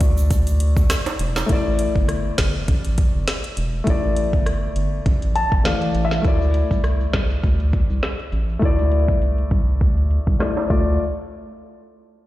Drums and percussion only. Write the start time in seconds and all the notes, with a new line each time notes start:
0.01 kick, closed hi-hat, shaker
0.17 shaker
0.31 kick, closed hi-hat, shaker
0.47 closed hi-hat, shaker
0.60 closed hi-hat
0.77 kick, shaker
0.90 cross-stick, snare, closed hi-hat, shaker
1.06 closed hi-hat, high timbale, shaker
1.19 closed hi-hat
1.36 snare, high timbale, shaker
1.49 kick, closed hi-hat
1.79 closed hi-hat
1.96 kick
2.09 cross-stick, closed hi-hat
2.38 kick, snare, closed hi-hat
2.68 kick, closed hi-hat
2.85 closed hi-hat
2.98 kick, closed hi-hat
3.28 snare, closed hi-hat
3.44 closed hi-hat
3.57 closed hi-hat
3.87 kick, closed hi-hat
4.16 closed hi-hat
4.33 kick
4.46 cross-stick, closed hi-hat
4.76 closed hi-hat
5.06 kick, closed hi-hat
5.22 closed hi-hat
5.36 closed hi-hat
5.52 kick
5.65 snare, closed hi-hat
5.82 closed hi-hat
5.95 closed hi-hat
6.11 snare
6.25 kick, closed hi-hat, shaker
6.42 shaker
6.54 closed hi-hat
6.71 kick, shaker
6.84 cross-stick, closed hi-hat, shaker
7.00 shaker
7.13 kick, snare, closed hi-hat
7.30 shaker
7.43 kick, closed hi-hat, shaker
7.60 closed hi-hat, shaker
7.73 kick, closed hi-hat
7.90 shaker
8.03 snare, closed hi-hat, shaker
8.19 closed hi-hat, shaker
8.32 closed hi-hat, shaker
8.49 shaker
8.62 kick, closed hi-hat, shaker
8.79 closed hi-hat, shaker
8.92 closed hi-hat
9.08 kick, shaker
9.22 closed hi-hat, shaker
9.38 closed hi-hat, shaker
9.51 kick, closed hi-hat
9.68 shaker
9.81 kick, closed hi-hat, shaker
9.97 closed hi-hat, shaker
10.11 closed hi-hat
10.27 kick, shaker
10.40 cross-stick, snare, closed hi-hat
10.57 closed hi-hat, high timbale, shaker
10.70 kick, crash, shaker